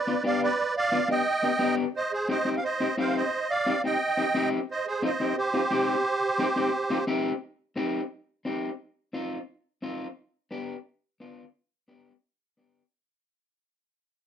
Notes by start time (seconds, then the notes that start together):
Already playing: B4 D5
0.07 B3 D4 F4
0.24 B3 D4 G4 D5 F5
0.43 B4 D5
0.77 D5 F5
0.92 B3 D4 F4
1.08 B3 D4 G4 D#5 G5
1.43 B3 D4 G4
1.59 B3 D4 G4
1.96 C5 D#5
2.12 G#4 C5
2.28 C4 D#4 G4 C5 D#5
2.45 C4 D#4 G4
2.57 F5
2.64 C5 D#5
2.80 C4 D#4 G4
2.98 C4 D#4 G4 C5 F5
3.16 C5 D#5
3.50 D5 F5
3.66 C4 D#4 G4
3.84 C4 D#4 G4 D#5 G5
4.17 C4 D#4 G4
4.34 C4 D#4 G4
4.71 C5 D#5
4.87 G#4 C5
5.02 C4 D#4 F4 C5 D#5
5.20 C4 D#4 G4
5.37 G4 C5
5.54 C4 D#4 F4
5.70 C4 D#4 G4
6.39 C4 D#4 G4
6.56 C4 D#4 G4
6.90 C4 D#4 F4
7.07 C4 D#4 G4
7.76 C4 D#4 G4
8.45 C4 D#4 G4
9.13 C4 D#4 F4
9.82 C4 D#4 F4
10.51 B3 D4 G4
11.20 B3 D4 F4
11.88 B3 D4 G4
12.57 B3 D4 G4